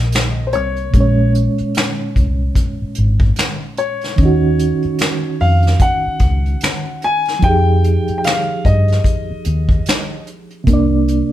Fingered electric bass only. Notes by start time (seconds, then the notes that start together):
Already playing: A#1
0.55 C2
0.94 A#1
1.61 muted fingered electric bass stroke
2.17 C2
2.82 muted fingered electric bass stroke
2.98 G#1
4.19 D#2
4.85 muted fingered electric bass stroke
5.41 F2
6.07 muted fingered electric bass stroke
6.21 C#2
7.43 F2
8.09 muted fingered electric bass stroke
8.66 G2
9.31 muted fingered electric bass stroke
9.46 D#2
10.68 C2